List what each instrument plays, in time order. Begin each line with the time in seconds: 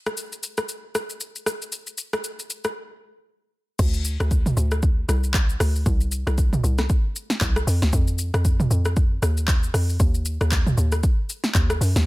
0.07 cross-stick, shaker
0.17 shaker
0.32 shaker
0.43 shaker
0.57 cross-stick, shaker
0.69 shaker
0.95 cross-stick, shaker
1.10 shaker
1.20 shaker
1.36 shaker
1.46 cross-stick, shaker
1.62 shaker
1.72 shaker
1.87 shaker
1.98 shaker
2.13 cross-stick, shaker
2.24 shaker
2.39 shaker
2.50 shaker
2.64 cross-stick, shaker
3.79 log drum bass D2, kick, crash, shaker
3.94 shaker
4.05 shaker
4.20 log drum bass D2, cross-stick, shaker
4.31 kick, shaker
4.46 mid tom, shaker
4.57 log drum bass D2, shaker
4.71 cross-stick, shaker
4.83 kick, shaker
5.09 log drum bass C2, cross-stick, shaker
5.24 shaker
5.34 kick, clap, shaker
5.49 shaker
5.60 log drum bass D2, cross-stick, open hi-hat, shaker
5.76 shaker
5.86 log drum bass C2, kick, shaker
6.01 shaker
6.12 shaker
6.27 log drum bass C2, cross-stick, shaker
6.38 kick, shaker
6.53 mid tom, shaker
6.64 log drum bass C2, shaker
6.78 cross-stick, snare, shaker
6.89 kick, shaker
7.16 shaker
7.30 snare, shaker
7.41 log drum bass C2, kick, clap, shaker
7.56 cross-stick, shaker
7.67 log drum bass F2, open hi-hat, shaker
7.82 log drum bass D2, snare, shaker
7.93 log drum bass F2, kick, shaker
8.07 shaker
8.19 shaker
8.34 log drum bass F2, cross-stick, shaker
8.45 kick, shaker
8.60 mid tom, shaker
8.71 log drum bass F2, shaker
8.85 cross-stick, shaker
8.96 kick, shaker
9.22 log drum bass D#2, cross-stick, shaker
9.37 shaker
9.48 kick, clap, shaker
9.63 shaker
9.74 log drum bass F2, cross-stick, open hi-hat, shaker
9.89 shaker
10.00 log drum bass D#2, kick, shaker
10.14 shaker
10.25 shaker
10.41 log drum bass D#2, cross-stick, shaker
10.52 kick, clap, shaker
10.67 mid tom, shaker
10.77 log drum bass D#2, shaker
10.92 cross-stick, shaker
11.03 kick, shaker
11.30 shaker
11.44 snare, shaker
11.55 log drum bass D#2, kick, clap, shaker
11.70 cross-stick, shaker
11.81 log drum bass F#2, open hi-hat, shaker
11.96 log drum bass D#2, snare, shaker